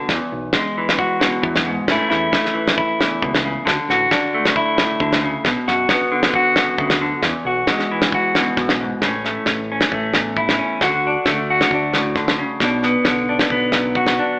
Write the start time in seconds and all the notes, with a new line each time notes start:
0.09 E2, kick, snare
0.32 B1
0.53 G#3, kick, snare
0.77 E3
0.89 snare
0.99 F#4, kick
1.20 B2, snare
1.42 E2 F#2, kick
1.56 snare
1.66 G#2
1.88 A1 E3 A3 C#4 E4, muted clean electric guitar stroke, kick, snare
2.10 E2 E4, snare
2.32 A3, kick, snare
2.45 snare
2.54 E3
2.68 snare
2.78 E4, kick
2.99 E2, snare
3.22 C#2 B2, kick
3.35 snare
3.44 C#3
3.65 D2 D3, kick, snare
3.88 A1 F#4, snare
4.11 D4, kick, snare
4.34 A3
4.45 snare
4.56 E4, kick
4.77 A2, snare
5.00 D2 D3, kick
5.13 snare
5.22 C#3
5.45 B1 B2, kick, snare
5.68 F#2 F#4, snare
5.89 B3, kick, snare
6.12 D3
6.23 snare
6.34 F#4, kick
6.56 F#2, snare
6.78 D2 C#3, kick
6.90 snare
7.01 D3
7.22 E2, kick, snare
7.45 B1 F#4
7.67 G#3, kick, snare
7.79 snare
7.92 E3
8.02 snare
8.12 F#4, kick
8.35 B2, snare
8.57 B1 F#2, kick, snare
8.69 snare
8.81 G#2
9.02 A1 A2 C#4, kick, snare
9.25 A3, snare
9.46 A1, kick, snare
9.72 C#4
9.81 snare
9.91 A1 A3, kick
10.14 E2, snare
10.37 E4, kick
10.49 snare
10.59 C#4
10.81 D2 D3 F#4, kick, snare
11.07 D4
11.26 D2 A3, kick, snare
11.50 F#4
11.61 snare
11.71 D2 D4, kick
11.93 A2, snare
12.16 D3, kick, snare
12.28 snare
12.39 C#3
12.60 B1 B2 D4, kick, snare
12.83 B3, snare
13.05 B1 D3, kick, snare
13.29 D4
13.39 snare
13.50 B1 B3, kick
13.72 F#2, snare
13.95 F#4, kick
14.06 snare
14.19 D4